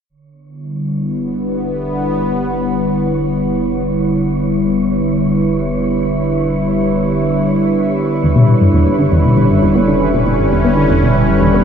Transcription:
0, 0, Header, 1, 5, 480
1, 0, Start_track
1, 0, Tempo, 508475
1, 90, Time_signature, 4, 2, 24, 8
1, 10989, End_track
2, 0, Start_track
2, 0, Title_t, "Synth texture"
2, 0, Program_c, 0, 99
2, 88, Note_on_c, 0, 73, 74
2, 10989, Note_off_c, 0, 73, 0
2, 10989, End_track
3, 0, Start_track
3, 0, Title_t, "Analog synth pad"
3, 0, Program_c, 1, 89
3, 92, Note_on_c, 1, 50, 78
3, 304, Note_on_c, 1, 59, 68
3, 386, Note_on_c, 1, 64, 67
3, 462, Note_on_c, 1, 55, 82
3, 833, Note_on_c, 1, 71, 80
3, 8547, Note_on_c, 1, 61, 70
3, 8692, Note_off_c, 1, 59, 0
3, 10989, Note_off_c, 1, 50, 0
3, 10989, Note_off_c, 1, 55, 0
3, 10989, Note_off_c, 1, 61, 0
3, 10989, Note_off_c, 1, 64, 0
3, 10989, Note_off_c, 1, 71, 0
3, 10989, End_track
4, 0, Start_track
4, 0, Title_t, "Synth arpeggio sound"
4, 0, Program_c, 2, 84
4, 7769, Note_on_c, 2, 40, 91
4, 7828, Note_off_c, 2, 40, 0
4, 7889, Note_on_c, 2, 47, 90
4, 7977, Note_off_c, 2, 47, 0
4, 8009, Note_on_c, 2, 47, 70
4, 8098, Note_off_c, 2, 47, 0
4, 8130, Note_on_c, 2, 43, 72
4, 8165, Note_off_c, 2, 43, 0
4, 8248, Note_on_c, 2, 40, 92
4, 8307, Note_off_c, 2, 40, 0
4, 8369, Note_on_c, 2, 59, 89
4, 8457, Note_off_c, 2, 59, 0
4, 8490, Note_on_c, 2, 50, 91
4, 8549, Note_off_c, 2, 50, 0
4, 8609, Note_on_c, 2, 40, 94
4, 8668, Note_off_c, 2, 40, 0
4, 8730, Note_on_c, 2, 47, 90
4, 8818, Note_off_c, 2, 47, 0
4, 8850, Note_on_c, 2, 47, 71
4, 8938, Note_off_c, 2, 47, 0
4, 8971, Note_on_c, 2, 43, 69
4, 9005, Note_off_c, 2, 43, 0
4, 9089, Note_on_c, 2, 40, 94
4, 9148, Note_off_c, 2, 40, 0
4, 9208, Note_on_c, 2, 59, 96
4, 9297, Note_off_c, 2, 59, 0
4, 9329, Note_on_c, 2, 50, 86
4, 9388, Note_off_c, 2, 50, 0
4, 9449, Note_on_c, 2, 40, 91
4, 9508, Note_off_c, 2, 40, 0
4, 9571, Note_on_c, 2, 47, 96
4, 9658, Note_off_c, 2, 47, 0
4, 9691, Note_on_c, 2, 47, 78
4, 9779, Note_off_c, 2, 47, 0
4, 9810, Note_on_c, 2, 43, 68
4, 9845, Note_off_c, 2, 43, 0
4, 9930, Note_on_c, 2, 40, 96
4, 9989, Note_off_c, 2, 40, 0
4, 10050, Note_on_c, 2, 59, 93
4, 10138, Note_off_c, 2, 59, 0
4, 10169, Note_on_c, 2, 50, 94
4, 10228, Note_off_c, 2, 50, 0
4, 10290, Note_on_c, 2, 40, 94
4, 10348, Note_off_c, 2, 40, 0
4, 10409, Note_on_c, 2, 47, 92
4, 10497, Note_off_c, 2, 47, 0
4, 10531, Note_on_c, 2, 47, 70
4, 10618, Note_off_c, 2, 47, 0
4, 10650, Note_on_c, 2, 43, 77
4, 10685, Note_off_c, 2, 43, 0
4, 10770, Note_on_c, 2, 40, 96
4, 10828, Note_off_c, 2, 40, 0
4, 10890, Note_on_c, 2, 59, 93
4, 10978, Note_off_c, 2, 59, 0
4, 10989, End_track
5, 0, Start_track
5, 0, Title_t, "Analog synth bass"
5, 0, Program_c, 3, 38
5, 89, Note_on_c, 3, 28, 76
5, 7745, Note_off_c, 3, 28, 0
5, 7771, Note_on_c, 3, 28, 77
5, 10989, Note_off_c, 3, 28, 0
5, 10989, End_track
0, 0, End_of_file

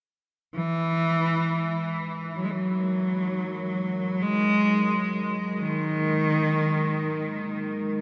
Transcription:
0, 0, Header, 1, 3, 480
1, 0, Start_track
1, 0, Tempo, 500000
1, 7692, End_track
2, 0, Start_track
2, 0, Title_t, "Analog synth pad"
2, 0, Program_c, 0, 89
2, 536, Note_on_c, 0, 56, 69
2, 1700, Note_on_c, 0, 63, 73
2, 1827, Note_on_c, 0, 70, 68
2, 2408, Note_on_c, 0, 82, 79
2, 7692, Note_off_c, 0, 56, 0
2, 7692, Note_off_c, 0, 63, 0
2, 7692, Note_off_c, 0, 70, 0
2, 7692, Note_off_c, 0, 82, 0
2, 7692, End_track
3, 0, Start_track
3, 0, Title_t, "Cello"
3, 0, Program_c, 1, 42
3, 518, Note_on_c, 1, 52, 102
3, 1846, Note_off_c, 1, 52, 0
3, 2264, Note_on_c, 1, 54, 68
3, 2341, Note_on_c, 1, 56, 57
3, 2355, Note_off_c, 1, 54, 0
3, 2399, Note_on_c, 1, 54, 75
3, 2414, Note_off_c, 1, 56, 0
3, 4051, Note_on_c, 1, 56, 100
3, 4065, Note_off_c, 1, 54, 0
3, 4942, Note_off_c, 1, 56, 0
3, 5369, Note_on_c, 1, 51, 94
3, 7113, Note_off_c, 1, 51, 0
3, 7692, End_track
0, 0, End_of_file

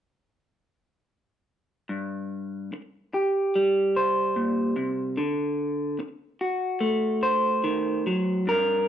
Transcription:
0, 0, Header, 1, 3, 480
1, 0, Start_track
1, 0, Key_signature, -2, "minor"
1, 0, Tempo, 841515
1, 1078, Time_signature, 4, 2, 24, 8
1, 1555, Tempo, 817439
1, 3955, Tempo, 834492
1, 5144, End_track
2, 0, Start_track
2, 0, Title_t, "Clean electric guitar"
2, 0, Program_c, 0, 27
2, 1079, Note_on_c, 0, 43, 55
2, 1550, Note_off_c, 0, 43, 0
2, 1799, Note_on_c, 0, 67, 43
2, 2042, Note_on_c, 0, 55, 52
2, 2282, Note_on_c, 0, 72, 49
2, 2515, Note_on_c, 0, 46, 56
2, 2749, Note_off_c, 0, 46, 0
2, 2752, Note_on_c, 0, 48, 57
2, 2965, Note_off_c, 0, 67, 0
2, 2968, Note_off_c, 0, 72, 0
2, 2992, Note_off_c, 0, 48, 0
2, 2992, Note_on_c, 0, 50, 59
2, 2996, Note_off_c, 0, 55, 0
2, 3468, Note_off_c, 0, 50, 0
2, 3719, Note_on_c, 0, 66, 47
2, 3950, Note_on_c, 0, 57, 54
2, 4193, Note_on_c, 0, 72, 55
2, 4429, Note_on_c, 0, 51, 57
2, 4673, Note_off_c, 0, 51, 0
2, 4676, Note_on_c, 0, 54, 58
2, 4885, Note_off_c, 0, 57, 0
2, 4887, Note_off_c, 0, 72, 0
2, 4890, Note_off_c, 0, 66, 0
2, 4909, Note_on_c, 0, 43, 64
2, 4916, Note_off_c, 0, 54, 0
2, 4918, Note_on_c, 0, 70, 76
2, 5144, Note_off_c, 0, 43, 0
2, 5144, Note_off_c, 0, 70, 0
2, 5144, End_track
3, 0, Start_track
3, 0, Title_t, "Muted clean electric guitar strokes"
3, 1556, Note_on_c, 9, 29, 50
3, 1615, Note_off_c, 9, 29, 0
3, 3471, Note_on_c, 9, 29, 53
3, 3530, Note_off_c, 9, 29, 0
3, 5144, End_track
0, 0, End_of_file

